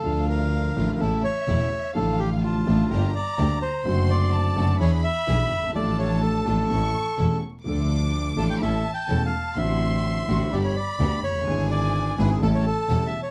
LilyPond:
<<
  \new Staff \with { instrumentName = "Violin section" } { \time 4/4 \key d \minor \tempo 4 = 126 f''2 e''2 | f''4 a''4 bes''2 | c'''4 a''4 b''2 | a''2 cis'''4. r8 |
d'''2 a''2 | c'''2 b''2 | gis''2 a''2 | }
  \new Staff \with { instrumentName = "Bandoneon" } { \time 4/4 \key d \minor a'8 bes'4~ bes'16. bes'32 a'8 cis''4. | a'8 g'8 f'4. d''4 c''8~ | c''8 d''4. cis''8 e''4. | d''8 cis''8 a'2~ a'8 r8 |
r4. a''16 g''16 \tuplet 3/2 { e''4 g''8~ g''8 f''4 } | e''2 d''16 cis''16 d''4 cis''8~ | cis''8 d''4 b'16 gis'16 a'16 cis''16 a'8~ \tuplet 3/2 { a'8 e''8 cis''8 } | }
  \new Staff \with { instrumentName = "String section" } { \time 4/4 \key d \minor <f d' f'>4. <a d' f'>8 <a cis' e'>8 r8 <a cis' e'>8 r8 | <a d' f'>4. <a d' f'>8 <bes d' g'>8 r8 <bes d' g'>8 r8 | <c' d' fis'>4. <c' d' fis'>8 <d' e' gis'>8 r8 <d' e' gis'>8 r8 | <d' f' a'>4. <d' f' a'>8 <cis' e' a'>8 r8 <cis' e' a'>8 r8 |
<d' f' a'>4. <d' f' a'>8 <cis' e' a'>8 r8 <cis' e' a'>8 r8 | <c' d' fis'>4. <c' d' fis'>8 <b d' g'>8 r8 <b d' g'>8 r8 | <d' e' gis'>4. <d' e' gis'>8 <cis' g' a'>8 r8 <cis' g' a'>8 r8 | }
  \new Staff \with { instrumentName = "Grand piano" } { \clef bass \time 4/4 \key d \minor <d, d f f'>4. <a,, a, d f a f'>8 <a,, a, cis e a e'>8 r8 <e,, e, cis e a e'>8 r8 | <a,, a, d f a f'>4. <a,, a, d f a f'>8 <g,, g, d g bes g'>8 r8 <d, d g bes g'>8 r8 | <fis, d fis a c' fis'>4. <fis, d fis a c' fis'>8 <e, e b d' gis'>8 r8 <b,, b, e b d' gis'>8 r32 fis,,32 g,,32 gis,,32 | <a,, a, f a d' a'>4. <a,, a, f a d' a'>8 <a,, a, e a cis' a'>8 r8 <e,, e, e a cis' a'>8 r8 |
<d, d f a d' a'>4. <a,, a, f a d' a'>8 <a,, a, e a cis' a'>8 r8 <e,, e, e a cis' a'>8 r8 | <a,, a, d a c' fis'>4. <a,, a, d a c' fis'>8 <g,, g, d g b g'>8 r8 <d, d g b g'>8 r32 f,,32 fis,,32 g,,32 | <gis,, gis, d gis b e'>4. <gis,, gis, d gis b e'>8 <a,, a, cis g a e'>8 r8 <e,, e, cis g a e'>8 r8 | }
  \new Staff \with { instrumentName = "Double bass" } { \clef bass \time 4/4 \key d \minor d,4. a,,8 a,,8 r8 e,,8 r8 | a,,4. a,,8 g,,8 r8 d,8 r8 | fis,,4. fis,,8 e,8 r8 b,,8 g,,8 | a,,4. a,,8 a,,8 r8 e,,8 r8 |
d,4. a,,8 a,,8 r8 e,,8 r8 | a,,4. a,,8 g,,8 r8 d,8 fis,,8 | gis,,4. gis,,8 a,,8 r8 e,,8 r8 | }
>>